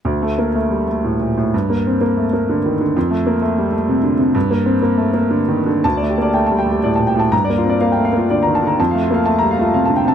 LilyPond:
<<
  \new Staff \with { instrumentName = "Grand piano" } { \time 3/4 \key g \minor \tempo 4 = 124 << { r2. | r2. | r2. | r2. |
r16 d''16 g'16 d''16 g''16 a''16 g''16 g'16 d''16 a''16 g''16 a''16 | r16 d''16 f'16 d''16 f''16 g''16 f''16 f'16 d''16 bes''16 a''16 bes''16 | a''16 f''16 f'16 f''16 a''8 f''16 f'16 f''16 a''16 g''16 a''16 | } \\ { \tuplet 3/2 { r4 bes8 } r2 | \tuplet 3/2 { r4 c'8 } r2 | \tuplet 3/2 { r4 bes8 } r2 | \tuplet 3/2 { r4 c'8 } r2 |
a''8 r2 r8 | bes''8 r2 r8 | r4 r16 bes''16 r4. | } >> }
  \new Staff \with { instrumentName = "Grand piano" } { \clef bass \time 3/4 \key g \minor \tuplet 3/2 { d,8 a4 a8 g8 a8 a,8 bes,8 a,8 } | \tuplet 3/2 { g,8 bes4 bes8 a8 bes8 d8 ees8 d8 } | \tuplet 3/2 { f,8 a4 a8 g8 a8 c8 d8 c8 } | \tuplet 3/2 { g,8 bes4 bes8 a8 bes8 d8 ees8 d8 } |
\tuplet 3/2 { d,8 a8 bes8 a8 g8 a8 a,8 bes,8 a,8 } | \tuplet 3/2 { g,8 bes8 c'8 bes8 a8 bes8 d8 ees8 d8 } | \tuplet 3/2 { f,8 a8 bes8 a8 g8 a8 c8 d8 c8 } | }
>>